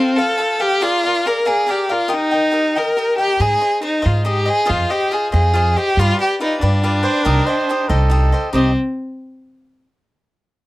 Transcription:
Already playing: C4 F4 A4 C5
0.00 F5
0.16 F4 A4 C5 F5
0.38 F4 A4 C5 F5
0.60 G4 A4 C5 F5
0.81 F4 G#4 A#4 D5 F5
1.03 A#4 D5 F5
1.26 G#4 A#4 D5 F5
1.45 G#4 A#4 D5 F5
1.67 G4 G#4 A#4 D5 F5
1.89 F4 A#4 D5 F5
2.08 G4 A#4 D#5 G5
2.14 D#4
2.31 A#4 D#5 G5
2.51 G4 A#4 D#5 G5
2.75 G4 A#4 D#5 G5
2.97 G4 A#4 D#5 G5
3.18 G4 A#4 D#5 G5
3.40 G#2 D#4 G#4 C5 D#5
3.61 G#4 C5 D#5
3.82 D#4 G#4 C5 D#5
4.02 G#2 D#4 F4 G#4 C5 D#5
4.25 D#4 G4 G#4 C5 D#5
4.46 G#4 C5 D#5
4.65 F4 G#4 C5 D#5
4.69 F2
4.90 G4 G#4 C5 D#5
5.11 F4 G#4 C5 D#5
5.32 F2 F4 G#4 C5 D#5
5.53 F4 G#4 C5 D#5
5.76 G4 G#4 C5 D#5
5.97 G2 F4 G4 B4 D5
6.19 G4 B4 D5
6.40 D#4 F4 G4 B4 D5
6.60 G2 D4 F4 G4 B4 D5
6.83 F4 G4 B4 D5
7.03 G4 B4 C5 D5
7.24 C2 D#4 G4 A#4 C5 D#5
7.46 G4 C5 D#5
7.69 D#4 G4 C5 D#5
7.89 C2 D#4 G4 A4 C5 D#5
8.10 D#4 G4 C5 D#5
8.32 G4 C5 D#5
8.53 C2 C4 D#4 G4 C5 D#5

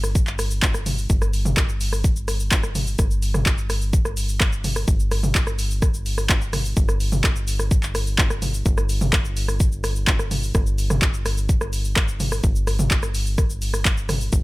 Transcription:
Already playing: G1
0.04 cross-stick, shaker
0.15 kick, shaker
0.27 clap, shaker
0.39 cross-stick, open hi-hat, shaker
0.51 shaker
0.62 kick, clap, shaker
0.74 cross-stick, shaker
0.86 mid tom, open hi-hat, shaker
0.98 shaker
1.10 G1, kick, shaker
1.22 cross-stick, shaker
1.33 open hi-hat, shaker
1.45 mid tom, shaker
1.57 kick, cross-stick, clap, shaker
1.69 shaker
1.81 open hi-hat, shaker
1.93 cross-stick, shaker
2.04 kick, shaker
2.16 shaker
2.28 cross-stick, open hi-hat, shaker
2.40 shaker
2.52 kick, clap, shaker
2.63 cross-stick, shaker
2.75 mid tom, open hi-hat, shaker
2.87 shaker
2.99 G1, kick, cross-stick, shaker
3.11 shaker
3.22 open hi-hat, shaker
3.34 cross-stick, mid tom, shaker
3.46 kick, clap, shaker
3.58 shaker
3.70 cross-stick, open hi-hat, shaker
3.82 shaker
3.93 kick, shaker
4.05 cross-stick, shaker
4.17 open hi-hat, shaker
4.29 shaker
4.41 kick, cross-stick, clap, shaker
4.53 shaker
4.64 mid tom, open hi-hat, shaker
4.76 cross-stick, shaker
4.88 G1, kick, shaker
5.00 shaker
5.11 cross-stick, open hi-hat, shaker
5.23 mid tom, shaker
5.35 kick, clap, shaker
5.47 cross-stick, shaker
5.59 open hi-hat, shaker
5.71 shaker
5.82 kick, cross-stick, shaker
5.94 shaker
6.06 open hi-hat, shaker
6.18 cross-stick, shaker
6.29 kick, clap, shaker
6.41 shaker
6.53 cross-stick, mid tom, open hi-hat, shaker
6.65 shaker
6.77 G1, kick, shaker
6.89 cross-stick, shaker
7.00 open hi-hat, shaker
7.12 mid tom, shaker
7.24 kick, cross-stick, clap, shaker
7.36 shaker
7.48 open hi-hat, shaker
7.59 cross-stick, shaker
7.71 kick, shaker
7.83 clap, shaker
7.95 cross-stick, open hi-hat, shaker
8.07 shaker
8.18 kick, clap, shaker
8.30 cross-stick, shaker
8.42 mid tom, open hi-hat, shaker
8.54 shaker
8.66 G1, kick, shaker
8.78 cross-stick, shaker
8.89 open hi-hat, shaker
9.01 mid tom, shaker
9.13 kick, cross-stick, clap, shaker
9.25 shaker
9.37 open hi-hat, shaker
9.48 cross-stick, shaker
9.60 kick, shaker
9.72 shaker
9.84 cross-stick, open hi-hat, shaker
9.96 shaker
10.07 kick, clap, shaker
10.19 cross-stick, shaker
10.31 mid tom, open hi-hat, shaker
10.43 shaker
10.55 G1, kick, cross-stick, shaker
10.67 shaker
10.78 open hi-hat, shaker
10.90 cross-stick, mid tom, shaker
11.02 kick, clap, shaker
11.14 shaker
11.26 cross-stick, open hi-hat, shaker
11.37 shaker
11.49 kick, shaker
11.61 cross-stick, shaker
11.73 open hi-hat, shaker
11.85 shaker
11.96 kick, cross-stick, clap, shaker
12.08 shaker
12.20 mid tom, open hi-hat, shaker
12.32 cross-stick, shaker
12.44 G1, kick, shaker
12.56 shaker
12.67 cross-stick, open hi-hat, shaker
12.79 mid tom, shaker
12.91 kick, clap, shaker
13.03 cross-stick, shaker
13.15 open hi-hat, shaker
13.26 shaker
13.38 kick, cross-stick, shaker
13.50 shaker
13.62 open hi-hat, shaker
13.74 cross-stick, shaker
13.85 kick, clap, shaker
13.97 shaker
14.09 cross-stick, mid tom, open hi-hat, shaker
14.21 shaker
14.33 G1, kick, shaker

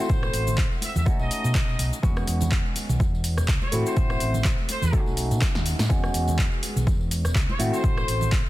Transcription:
Already playing: A3 C4 E4 F#4
0.00 C5
0.09 A1, kick, tambourine, cabasa
0.23 cross-stick, tambourine
0.33 A1, open hi-hat, cabasa
0.47 tambourine, low conga, cabasa
0.57 kick, clap, tambourine, cabasa
0.72 tambourine
0.81 E5, open hi-hat, high conga, cabasa
0.95 E2 E5, tambourine, low conga, cabasa
1.05 A3 C#4 D#4 F#4, kick, tambourine, cabasa
1.19 B1 D#5, tambourine, high conga
1.31 open hi-hat, cabasa
1.44 B2, tambourine, cabasa
1.55 kick, clap, cabasa
1.69 tambourine
1.79 B1, open hi-hat, cabasa
1.93 tambourine, cabasa
2.03 E2 G#3 B3 C#4 F#4, kick, tambourine, cabasa
2.17 cross-stick, tambourine
2.27 E2, open hi-hat, cabasa
2.41 tambourine, low conga, cabasa
2.52 kick, clap, cabasa
2.66 tambourine
2.76 open hi-hat, high conga, cabasa
2.89 B1, tambourine, low conga, cabasa
3.00 kick, tambourine, cabasa
3.15 tambourine
3.24 open hi-hat, cabasa
3.38 E1, cross-stick, tambourine, cabasa
3.48 kick, clap, cabasa
3.62 C#5, tambourine, high conga
3.72 A2 A3 C4 E4 F#4, open hi-hat, low conga, cabasa
3.86 C5, tambourine, cabasa
3.96 A1, kick, tambourine, cabasa
4.10 cross-stick, tambourine
4.20 A1, open hi-hat, cabasa
4.34 tambourine, low conga, cabasa
4.44 kick, clap, tambourine, cabasa
4.58 tambourine
4.69 C5, open hi-hat, high conga, cabasa
4.82 E2, tambourine, low conga, cabasa
4.92 A3 C#4 D#4 F#4, kick, cabasa
5.06 B1, tambourine, high conga
5.17 open hi-hat, cabasa
5.31 B2, tambourine, cabasa
5.42 kick, snare, clap, cabasa
5.55 D#2, snare, tambourine
5.66 open hi-hat, cabasa
5.79 A2, snare, tambourine, cabasa
5.89 G#3 B3 C#4 F#4, kick, cabasa
6.04 cross-stick, tambourine
6.14 E2, open hi-hat, cabasa
6.27 tambourine, low conga, cabasa
6.39 kick, clap, cabasa
6.52 tambourine
6.63 open hi-hat, high conga, cabasa
6.76 B1, tambourine, low conga, cabasa
6.87 E2, kick, tambourine, cabasa
7.01 tambourine
7.11 open hi-hat, cabasa
7.24 E1, cross-stick, tambourine, cabasa
7.35 C#2, kick, clap, cabasa
7.49 C#5, tambourine, high conga
7.59 A2 A3 C4 E4 F#4, open hi-hat, low conga, cabasa
7.73 C5, tambourine, cabasa
7.84 A1, kick, cabasa
7.97 cross-stick, tambourine
8.08 A1, open hi-hat, cabasa
8.21 tambourine, low conga, cabasa
8.32 kick, clap, tambourine, cabasa
8.46 tambourine

